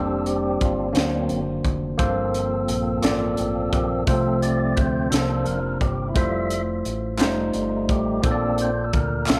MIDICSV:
0, 0, Header, 1, 5, 480
1, 0, Start_track
1, 0, Key_signature, -1, "major"
1, 0, Tempo, 693642
1, 1381, Time_signature, 6, 3, 24, 8
1, 6503, End_track
2, 0, Start_track
2, 0, Title_t, "Tine electric piano"
2, 0, Program_c, 0, 4
2, 0, Note_on_c, 0, 58, 64
2, 0, Note_on_c, 0, 62, 66
2, 0, Note_on_c, 0, 67, 58
2, 0, Note_on_c, 0, 72, 70
2, 88, Control_c, 0, 64, 127
2, 485, Note_off_c, 0, 58, 0
2, 487, Note_off_c, 0, 62, 0
2, 489, Note_off_c, 0, 67, 0
2, 492, Note_off_c, 0, 72, 0
2, 643, Note_on_c, 0, 58, 67
2, 647, Note_on_c, 0, 62, 58
2, 648, Note_on_c, 0, 50, 55
2, 651, Note_on_c, 0, 66, 53
2, 659, Note_on_c, 0, 72, 62
2, 668, Control_c, 0, 64, 0
2, 778, Control_c, 0, 64, 127
2, 1201, Note_off_c, 0, 58, 0
2, 1203, Note_off_c, 0, 62, 0
2, 1205, Note_off_c, 0, 66, 0
2, 1209, Note_off_c, 0, 72, 0
2, 1347, Note_off_c, 0, 50, 0
2, 1368, Note_on_c, 0, 58, 89
2, 1375, Note_on_c, 0, 65, 71
2, 1377, Note_on_c, 0, 43, 65
2, 1378, Note_on_c, 0, 72, 88
2, 1379, Note_on_c, 0, 69, 75
2, 1390, Control_c, 0, 64, 0
2, 1523, Control_c, 0, 64, 127
2, 1924, Note_off_c, 0, 58, 0
2, 1928, Note_off_c, 0, 65, 0
2, 1929, Note_off_c, 0, 72, 0
2, 1930, Note_off_c, 0, 69, 0
2, 2072, Note_off_c, 0, 43, 0
2, 2089, Note_on_c, 0, 58, 72
2, 2091, Note_on_c, 0, 65, 60
2, 2103, Note_on_c, 0, 69, 70
2, 2104, Note_on_c, 0, 74, 84
2, 2645, Note_off_c, 0, 58, 0
2, 2646, Note_off_c, 0, 65, 0
2, 2652, Note_off_c, 0, 69, 0
2, 2652, Note_off_c, 0, 74, 0
2, 2814, Note_on_c, 0, 57, 77
2, 2817, Note_on_c, 0, 60, 62
2, 2821, Note_on_c, 0, 48, 61
2, 2822, Note_on_c, 0, 65, 68
2, 2824, Note_on_c, 0, 72, 77
2, 2832, Control_c, 0, 64, 0
2, 2968, Control_c, 0, 64, 127
2, 3368, Note_off_c, 0, 57, 0
2, 3369, Note_off_c, 0, 60, 0
2, 3372, Note_off_c, 0, 65, 0
2, 3373, Note_off_c, 0, 72, 0
2, 3514, Note_off_c, 0, 48, 0
2, 3530, Note_on_c, 0, 62, 62
2, 3531, Note_on_c, 0, 58, 55
2, 3538, Note_on_c, 0, 48, 58
2, 3540, Note_on_c, 0, 65, 54
2, 3545, Note_on_c, 0, 72, 70
2, 3553, Control_c, 0, 64, 0
2, 3667, Control_c, 0, 64, 127
2, 4086, Note_off_c, 0, 58, 0
2, 4086, Note_off_c, 0, 62, 0
2, 4090, Note_off_c, 0, 65, 0
2, 4093, Note_off_c, 0, 72, 0
2, 4233, Note_off_c, 0, 48, 0
2, 4252, Note_on_c, 0, 57, 69
2, 4259, Note_on_c, 0, 64, 63
2, 4263, Note_on_c, 0, 65, 64
2, 4266, Note_on_c, 0, 72, 78
2, 4273, Control_c, 0, 64, 0
2, 4378, Control_c, 0, 64, 127
2, 4807, Note_off_c, 0, 57, 0
2, 4810, Note_off_c, 0, 64, 0
2, 4812, Note_off_c, 0, 65, 0
2, 4814, Note_off_c, 0, 72, 0
2, 4965, Note_on_c, 0, 56, 58
2, 4972, Note_on_c, 0, 63, 69
2, 4975, Note_on_c, 0, 65, 65
2, 4984, Note_on_c, 0, 72, 86
2, 4991, Control_c, 0, 64, 0
2, 5012, Note_on_c, 0, 57, 76
2, 5019, Note_off_c, 0, 56, 0
2, 5107, Control_c, 0, 64, 127
2, 5526, Note_off_c, 0, 63, 0
2, 5527, Note_off_c, 0, 65, 0
2, 5532, Note_off_c, 0, 72, 0
2, 5546, Note_off_c, 0, 57, 0
2, 5688, Note_on_c, 0, 58, 77
2, 5693, Note_on_c, 0, 65, 65
2, 5694, Note_on_c, 0, 46, 61
2, 5700, Note_on_c, 0, 69, 68
2, 5708, Note_on_c, 0, 72, 63
2, 5711, Control_c, 0, 64, 0
2, 5750, Note_off_c, 0, 72, 0
2, 5752, Note_on_c, 0, 74, 87
2, 5820, Control_c, 0, 64, 127
2, 6243, Note_off_c, 0, 58, 0
2, 6246, Note_off_c, 0, 65, 0
2, 6250, Note_off_c, 0, 69, 0
2, 6276, Note_off_c, 0, 74, 0
2, 6390, Note_off_c, 0, 46, 0
2, 6409, Note_on_c, 0, 58, 67
2, 6417, Note_on_c, 0, 65, 60
2, 6424, Note_on_c, 0, 69, 63
2, 6427, Note_on_c, 0, 76, 56
2, 6469, Note_off_c, 0, 76, 0
2, 6470, Note_on_c, 0, 77, 68
2, 6503, Note_off_c, 0, 58, 0
2, 6503, Note_off_c, 0, 65, 0
2, 6503, Note_off_c, 0, 69, 0
2, 6503, Note_off_c, 0, 77, 0
2, 6503, End_track
3, 0, Start_track
3, 0, Title_t, "Tonewheel organ"
3, 0, Program_c, 1, 16
3, 0, Note_on_c, 1, 55, 55
3, 0, Note_on_c, 1, 60, 45
3, 0, Note_on_c, 1, 62, 60
3, 0, Note_on_c, 1, 69, 95
3, 119, Note_off_c, 1, 69, 0
3, 128, Note_on_c, 1, 69, 57
3, 179, Note_off_c, 1, 69, 0
3, 184, Note_on_c, 1, 67, 86
3, 429, Note_off_c, 1, 67, 0
3, 429, Note_on_c, 1, 65, 78
3, 603, Note_off_c, 1, 65, 0
3, 614, Note_on_c, 1, 61, 54
3, 629, Note_off_c, 1, 55, 0
3, 634, Note_off_c, 1, 60, 0
3, 635, Note_off_c, 1, 62, 0
3, 656, Note_on_c, 1, 54, 49
3, 657, Note_on_c, 1, 58, 45
3, 661, Note_off_c, 1, 61, 0
3, 664, Note_on_c, 1, 62, 68
3, 666, Note_on_c, 1, 60, 63
3, 886, Note_off_c, 1, 62, 0
3, 978, Note_off_c, 1, 54, 0
3, 978, Note_off_c, 1, 58, 0
3, 983, Note_off_c, 1, 60, 0
3, 1375, Note_on_c, 1, 53, 52
3, 1378, Note_on_c, 1, 69, 49
3, 1380, Note_on_c, 1, 58, 51
3, 1389, Note_on_c, 1, 60, 58
3, 2583, Note_on_c, 1, 67, 79
3, 2691, Note_off_c, 1, 67, 0
3, 2792, Note_off_c, 1, 53, 0
3, 2793, Note_off_c, 1, 69, 0
3, 2794, Note_off_c, 1, 58, 0
3, 2799, Note_off_c, 1, 60, 0
3, 2832, Note_on_c, 1, 57, 51
3, 2834, Note_on_c, 1, 53, 55
3, 2834, Note_on_c, 1, 69, 92
3, 2836, Note_on_c, 1, 60, 61
3, 3052, Note_off_c, 1, 69, 0
3, 3061, Note_on_c, 1, 74, 90
3, 3296, Note_on_c, 1, 72, 85
3, 3309, Note_off_c, 1, 74, 0
3, 3520, Note_off_c, 1, 57, 0
3, 3521, Note_off_c, 1, 53, 0
3, 3522, Note_off_c, 1, 60, 0
3, 3539, Note_on_c, 1, 69, 84
3, 3547, Note_off_c, 1, 72, 0
3, 3555, Note_on_c, 1, 53, 57
3, 3561, Note_on_c, 1, 58, 48
3, 3565, Note_on_c, 1, 62, 57
3, 3774, Note_on_c, 1, 70, 72
3, 3788, Note_off_c, 1, 69, 0
3, 3869, Note_off_c, 1, 53, 0
3, 3872, Note_off_c, 1, 58, 0
3, 3874, Note_off_c, 1, 62, 0
3, 4001, Note_off_c, 1, 70, 0
3, 4020, Note_on_c, 1, 67, 73
3, 4211, Note_on_c, 1, 64, 59
3, 4218, Note_off_c, 1, 67, 0
3, 4254, Note_on_c, 1, 65, 68
3, 4257, Note_on_c, 1, 55, 55
3, 4261, Note_off_c, 1, 64, 0
3, 4263, Note_on_c, 1, 57, 46
3, 4266, Note_on_c, 1, 76, 62
3, 4482, Note_off_c, 1, 65, 0
3, 4579, Note_off_c, 1, 55, 0
3, 4582, Note_off_c, 1, 57, 0
3, 4584, Note_off_c, 1, 76, 0
3, 4989, Note_on_c, 1, 55, 50
3, 4995, Note_on_c, 1, 57, 45
3, 4999, Note_on_c, 1, 63, 58
3, 5467, Note_on_c, 1, 67, 80
3, 5678, Note_off_c, 1, 55, 0
3, 5681, Note_off_c, 1, 57, 0
3, 5683, Note_off_c, 1, 63, 0
3, 5702, Note_on_c, 1, 58, 53
3, 5704, Note_on_c, 1, 60, 56
3, 5710, Note_on_c, 1, 62, 63
3, 5712, Note_off_c, 1, 67, 0
3, 5714, Note_on_c, 1, 69, 87
3, 5931, Note_off_c, 1, 69, 0
3, 5961, Note_on_c, 1, 72, 89
3, 6021, Note_off_c, 1, 58, 0
3, 6022, Note_off_c, 1, 60, 0
3, 6025, Note_off_c, 1, 62, 0
3, 6118, Note_on_c, 1, 69, 60
3, 6130, Note_off_c, 1, 72, 0
3, 6174, Note_off_c, 1, 69, 0
3, 6189, Note_on_c, 1, 70, 94
3, 6430, Note_on_c, 1, 69, 91
3, 6432, Note_off_c, 1, 70, 0
3, 6503, Note_off_c, 1, 69, 0
3, 6503, End_track
4, 0, Start_track
4, 0, Title_t, "Fingered electric bass"
4, 0, Program_c, 2, 33
4, 0, Note_on_c, 2, 29, 90
4, 393, Note_off_c, 2, 29, 0
4, 426, Note_on_c, 2, 31, 90
4, 644, Note_off_c, 2, 31, 0
4, 661, Note_on_c, 2, 38, 93
4, 882, Note_off_c, 2, 38, 0
4, 901, Note_on_c, 2, 30, 70
4, 1122, Note_off_c, 2, 30, 0
4, 1139, Note_on_c, 2, 29, 82
4, 1361, Note_off_c, 2, 29, 0
4, 1378, Note_on_c, 2, 31, 87
4, 1832, Note_off_c, 2, 31, 0
4, 1859, Note_on_c, 2, 34, 92
4, 2081, Note_off_c, 2, 34, 0
4, 2102, Note_on_c, 2, 33, 91
4, 2323, Note_off_c, 2, 33, 0
4, 2346, Note_on_c, 2, 33, 83
4, 2565, Note_off_c, 2, 33, 0
4, 2581, Note_on_c, 2, 34, 85
4, 2802, Note_off_c, 2, 34, 0
4, 2819, Note_on_c, 2, 36, 100
4, 3273, Note_off_c, 2, 36, 0
4, 3304, Note_on_c, 2, 38, 85
4, 3524, Note_off_c, 2, 38, 0
4, 3544, Note_on_c, 2, 36, 84
4, 3764, Note_off_c, 2, 36, 0
4, 3782, Note_on_c, 2, 29, 85
4, 4003, Note_off_c, 2, 29, 0
4, 4022, Note_on_c, 2, 31, 84
4, 4243, Note_off_c, 2, 31, 0
4, 4263, Note_on_c, 2, 29, 103
4, 4715, Note_off_c, 2, 29, 0
4, 4746, Note_on_c, 2, 33, 76
4, 4965, Note_off_c, 2, 33, 0
4, 4984, Note_on_c, 2, 29, 90
4, 5204, Note_off_c, 2, 29, 0
4, 5222, Note_on_c, 2, 31, 80
4, 5443, Note_off_c, 2, 31, 0
4, 5463, Note_on_c, 2, 33, 79
4, 5684, Note_off_c, 2, 33, 0
4, 5702, Note_on_c, 2, 34, 90
4, 6154, Note_off_c, 2, 34, 0
4, 6185, Note_on_c, 2, 38, 85
4, 6404, Note_off_c, 2, 38, 0
4, 6433, Note_on_c, 2, 36, 89
4, 6503, Note_off_c, 2, 36, 0
4, 6503, End_track
5, 0, Start_track
5, 0, Title_t, "Drums"
5, 180, Note_on_c, 9, 42, 49
5, 250, Note_off_c, 9, 42, 0
5, 421, Note_on_c, 9, 42, 45
5, 424, Note_on_c, 9, 36, 85
5, 491, Note_off_c, 9, 42, 0
5, 493, Note_off_c, 9, 36, 0
5, 656, Note_on_c, 9, 42, 82
5, 672, Note_on_c, 9, 38, 107
5, 726, Note_off_c, 9, 42, 0
5, 741, Note_off_c, 9, 38, 0
5, 894, Note_on_c, 9, 42, 45
5, 963, Note_off_c, 9, 42, 0
5, 1139, Note_on_c, 9, 36, 72
5, 1142, Note_on_c, 9, 42, 37
5, 1208, Note_off_c, 9, 36, 0
5, 1211, Note_off_c, 9, 42, 0
5, 1376, Note_on_c, 9, 42, 73
5, 1378, Note_on_c, 9, 36, 100
5, 1445, Note_off_c, 9, 42, 0
5, 1447, Note_off_c, 9, 36, 0
5, 1622, Note_on_c, 9, 42, 50
5, 1691, Note_off_c, 9, 42, 0
5, 1857, Note_on_c, 9, 42, 56
5, 1926, Note_off_c, 9, 42, 0
5, 2094, Note_on_c, 9, 42, 83
5, 2110, Note_on_c, 9, 38, 107
5, 2163, Note_off_c, 9, 42, 0
5, 2179, Note_off_c, 9, 38, 0
5, 2334, Note_on_c, 9, 42, 52
5, 2404, Note_off_c, 9, 42, 0
5, 2579, Note_on_c, 9, 36, 74
5, 2580, Note_on_c, 9, 42, 48
5, 2648, Note_off_c, 9, 36, 0
5, 2650, Note_off_c, 9, 42, 0
5, 2817, Note_on_c, 9, 42, 75
5, 2819, Note_on_c, 9, 36, 100
5, 2886, Note_off_c, 9, 42, 0
5, 2888, Note_off_c, 9, 36, 0
5, 3062, Note_on_c, 9, 42, 54
5, 3131, Note_off_c, 9, 42, 0
5, 3300, Note_on_c, 9, 42, 51
5, 3304, Note_on_c, 9, 36, 93
5, 3369, Note_off_c, 9, 42, 0
5, 3373, Note_off_c, 9, 36, 0
5, 3542, Note_on_c, 9, 42, 93
5, 3558, Note_on_c, 9, 38, 106
5, 3612, Note_off_c, 9, 42, 0
5, 3627, Note_off_c, 9, 38, 0
5, 3776, Note_on_c, 9, 42, 50
5, 3845, Note_off_c, 9, 42, 0
5, 4020, Note_on_c, 9, 36, 75
5, 4024, Note_on_c, 9, 42, 41
5, 4089, Note_off_c, 9, 36, 0
5, 4094, Note_off_c, 9, 42, 0
5, 4260, Note_on_c, 9, 36, 107
5, 4260, Note_on_c, 9, 42, 73
5, 4329, Note_off_c, 9, 36, 0
5, 4329, Note_off_c, 9, 42, 0
5, 4501, Note_on_c, 9, 42, 53
5, 4570, Note_off_c, 9, 42, 0
5, 4742, Note_on_c, 9, 42, 48
5, 4811, Note_off_c, 9, 42, 0
5, 4970, Note_on_c, 9, 39, 100
5, 4976, Note_on_c, 9, 42, 82
5, 4992, Note_on_c, 9, 38, 117
5, 5040, Note_off_c, 9, 39, 0
5, 5045, Note_off_c, 9, 42, 0
5, 5061, Note_off_c, 9, 38, 0
5, 5214, Note_on_c, 9, 42, 51
5, 5283, Note_off_c, 9, 42, 0
5, 5460, Note_on_c, 9, 36, 75
5, 5463, Note_on_c, 9, 42, 44
5, 5529, Note_off_c, 9, 36, 0
5, 5532, Note_off_c, 9, 42, 0
5, 5698, Note_on_c, 9, 42, 76
5, 5699, Note_on_c, 9, 36, 110
5, 5767, Note_off_c, 9, 42, 0
5, 5769, Note_off_c, 9, 36, 0
5, 5937, Note_on_c, 9, 42, 53
5, 6006, Note_off_c, 9, 42, 0
5, 6180, Note_on_c, 9, 42, 51
5, 6183, Note_on_c, 9, 36, 90
5, 6250, Note_off_c, 9, 42, 0
5, 6252, Note_off_c, 9, 36, 0
5, 6410, Note_on_c, 9, 39, 107
5, 6418, Note_on_c, 9, 42, 94
5, 6434, Note_on_c, 9, 38, 112
5, 6479, Note_off_c, 9, 39, 0
5, 6488, Note_off_c, 9, 42, 0
5, 6503, Note_off_c, 9, 38, 0
5, 6503, End_track
0, 0, End_of_file